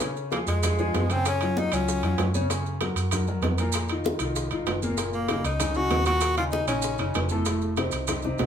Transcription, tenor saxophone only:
0.32 0.39 A#3 medium
0.48 1.13 G#3 medium
1.12 1.26 C4 loud
1.28 1.61 C#4 medium
1.59 1.76 D#4 loud
1.74 2.35 C#4 loud
5.14 5.43 A#3 medium
5.46 5.78 D#4 medium
5.76 6.06 F#4 loud
6.07 6.35 F#4 loud
6.38 6.44 F4 medium
6.52 6.67 D#4 medium
6.68 7.26 C#4 medium

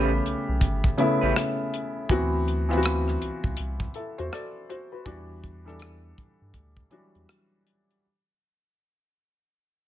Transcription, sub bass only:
0.00 0.21 A1 loud
0.26 0.35 B1 soft
0.49 0.63 B1 medium
0.62 0.91 G1 medium
1.23 1.34 A1 medium
2.10 3.17 D2 medium
3.22 3.31 C2 soft
3.45 3.56 C2 medium
3.59 3.88 C2 medium
4.19 4.30 E2 medium
5.07 6.13 E2 loud
6.19 6.27 G2 soft
6.41 6.52 G2 medium
6.55 6.84 D2 medium
7.15 7.26 E2 medium

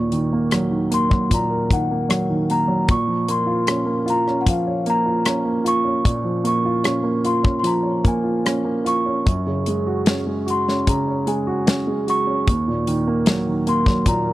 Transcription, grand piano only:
0.00 2.86 D#2 soft
0.00 1.28 A#2 soft
0.12 0.69 D#3 soft
0.33 0.89 A#3 soft
0.53 1.08 F#3 soft
0.71 1.69 D#3 soft
0.91 1.90 A#3 soft
1.09 2.07 F#3 soft
1.30 2.85 A#2 medium
1.50 2.85 A#4 soft
1.71 2.28 D#3 medium
1.91 2.48 A#3 soft
2.09 2.66 F#3 soft
2.30 2.88 D#3 soft
2.50 2.88 A#3 soft
2.68 2.88 F#3 soft
2.88 6.01 A#2 medium
3.08 4.44 F3 soft
3.28 3.84 A#3 soft
3.46 4.04 F4 medium
3.68 4.26 C#4 soft
3.86 4.85 A#3 soft
4.06 5.04 F4 medium
4.27 5.25 C#4 soft
4.46 6.23 F3 medium
4.67 6.22 C#5 soft
4.86 5.43 A#3 medium
5.06 5.63 F4 soft
5.26 5.83 C#4 soft
5.45 6.43 A#3 soft
5.64 6.64 F4 soft
5.84 6.82 C#4 soft
6.04 9.22 A#2 medium
6.24 7.62 F3 soft
6.44 7.02 A#3 soft
6.65 7.23 F4 soft
6.84 7.42 C#4 medium
7.03 8.02 A#3 soft
7.24 8.22 F4 soft
7.43 8.44 C#4 soft
7.63 9.22 F3 medium
7.83 9.22 C#5 soft
8.04 8.63 A#3 medium
8.24 8.83 F4 soft
8.45 9.04 C#4 soft
8.64 9.24 A#3 soft
8.85 9.25 F4 soft
9.06 9.26 C#4 soft
9.26 12.43 F#2 soft
9.46 10.86 C#3 soft
9.67 10.25 G#3 soft
9.87 10.45 F#4 soft
10.07 10.67 C#4 medium
10.27 11.25 G#3 soft
10.46 11.46 F#4 soft
10.68 11.65 C#4 soft
10.87 12.43 C#3 medium
11.07 12.43 C#5 soft
11.27 11.86 G#3 soft
11.47 12.05 F#4 medium
11.66 12.25 C#4 soft
11.87 12.45 G#3 soft
12.07 12.46 F#4 medium
12.27 12.47 C#4 medium
12.47 14.33 D#2 medium
12.68 14.05 A#2 medium
12.87 13.45 D#3 medium
13.07 13.65 A#3 medium
13.27 13.86 F#3 soft
13.47 14.33 D#3 soft
13.67 14.33 A#3 soft
13.87 14.33 F#3 soft
14.06 14.33 A#2 medium
14.26 14.33 A#4 soft

